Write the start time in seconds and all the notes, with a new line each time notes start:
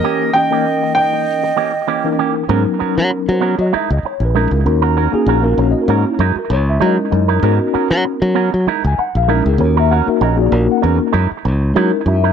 Already playing: A#4 D#5
0.02 E3 A#3 C#4 D#4 G4
0.34 E3 A#3 C#4 D#4 G4 D#5 G5, muted clean electric guitar stroke
0.50 E3 A#3 C#4 D#4 G4 A#4
0.66 muted clean electric guitar stroke
0.83 muted clean electric guitar stroke
0.95 D#5 G5, muted clean electric guitar stroke
1.13 muted clean electric guitar stroke
1.43 muted clean electric guitar stroke
1.56 E3 A#3 C#4 G4
1.73 muted clean electric guitar stroke
1.87 E3 A#3 C#4 G4
2.04 E3 A#3 C#4 D#4 A#4
2.19 E3 A#3 C#4 G4
2.36 muted clean electric guitar stroke
2.49 G#2 F#3 B3 C#4 D#4 F#4 A#4
2.65 muted clean electric guitar stroke
2.79 B3 C#4 F#4 A#4, muted fingered electric bass stroke
2.97 F#3, muted clean electric guitar stroke
3.10 muted clean electric guitar stroke
3.29 F#3 C5
3.41 B3 C#4 F#4 A#4 C#5
3.58 F#3 D#5, muted clean electric guitar stroke
3.73 G#3 D#4 E4 A#4 E5, muted fingered electric bass stroke
3.90 C#2 D#5, muted clean electric guitar stroke
4.03 C#5, muted fingered electric bass stroke, muted clean electric guitar stroke
4.20 A#1
4.25 B4
4.34 G#3 C#4 D#4 E4 A#4
4.39 A#4
4.51 C#2, muted clean electric guitar stroke
4.64 D#2 A#3 C#4 D#4 F#4 A#4, muted clean electric guitar stroke
4.82 F#4 A#4
4.97 C#4 F#4 A#4
5.12 A#3 C#4 D#4 F#4 G#4, muted clean electric guitar stroke, muted fingered electric bass stroke
5.26 A#1 C#4 F#4 A#4
5.42 A#3 C#4 D#4 F#4 A#4, muted clean electric guitar stroke
5.57 A#1 A#3 C#4 D#4 F#4 C#5, muted clean electric guitar stroke
5.71 D#5
5.82 A#4
5.88 G#2 C#4 F#4 A#4
6.06 E4, muted clean electric guitar stroke
6.19 F#2 G#3 D#4 E4 F#4 A#4
6.36 A#4, muted fingered electric bass stroke, muted clean electric guitar stroke
6.50 C#2 C#5, muted clean electric guitar stroke
6.69 E5
6.80 F#3 G#3 C#4 D#4 E4 A#4
6.85 D#5
6.97 muted clean electric guitar stroke
7.11 F#2 G#3 C#4 D#4 E4 A#4, muted clean electric guitar stroke
7.28 D#4 E4 A#4
7.42 G#2 B3 C#4 D#4 F#4 A#4
7.60 muted clean electric guitar stroke
7.73 B3 C#4 F#4 A#4, muted fingered electric bass stroke
7.90 F#3, muted clean electric guitar stroke
8.04 muted clean electric guitar stroke
8.22 F#3
8.35 B3 C#4 F#4 A#4
8.53 F#3, muted clean electric guitar stroke
8.67 G#3 D#4 E4 A#4, muted fingered electric bass stroke
8.84 C#2 G#5, muted clean electric guitar stroke
8.98 F#5, muted fingered electric bass stroke, muted clean electric guitar stroke
9.15 A#1 F5
9.28 G#3 C#4 D#4 E4 A#4 E5
9.45 C#2 G#4, muted clean electric guitar stroke
9.58 D#2 A#3 C#4 D#4 F#4 A#4 C#5, muted clean electric guitar stroke
9.77 F#4 A#4 E5
9.91 C#4 F#4 A#4 F#5
10.06 A#3 C#4 D#4 F#4 A#4 E5, muted fingered electric bass stroke, muted clean electric guitar stroke
10.21 A#1 C#4 F#4 A#4 D#5
10.36 A#3 C#4 D#4 F#4 G#4, muted clean electric guitar stroke
10.41 D5
10.50 A#1 A#3 C#4 D#4 F#4 A#4 C#5, muted clean electric guitar stroke
10.72 F#5
10.82 E2 C#4 F#4 A#4
10.99 muted clean electric guitar stroke
11.12 F#2 G#3 D#4 E4 A#4
11.31 muted clean electric guitar stroke, muted fingered electric bass stroke
11.45 C#2, muted clean electric guitar stroke
11.73 F#3 G#3 C#4 D#4 E4 A#4
11.93 muted clean electric guitar stroke
12.05 F#2 G#3 C#4 D#4 E4 F#4 E5, muted clean electric guitar stroke
12.24 D#4 E4 A#4